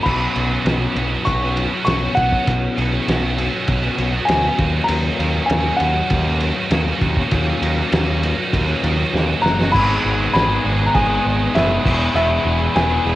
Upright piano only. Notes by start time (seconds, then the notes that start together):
0.03 B5
1.25 C#6
1.85 C#6
2.15 F#5
4.25 G#5
4.84 A#5
5.46 G#5
5.77 F#5
9.42 A#5
9.72 B5
10.33 B5
10.86 A#5
10.94 G#5
11.55 E5
12.16 E5
12.76 G#5